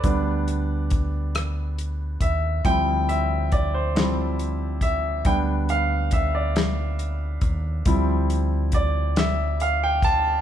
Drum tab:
HH |xxxxxx|xxxxxx|xxxxxx|xxxxxx|
SD |---r--|---o--|---o--|---o--|
BD |o-o--o|o-o--o|o-o--o|o-o--o|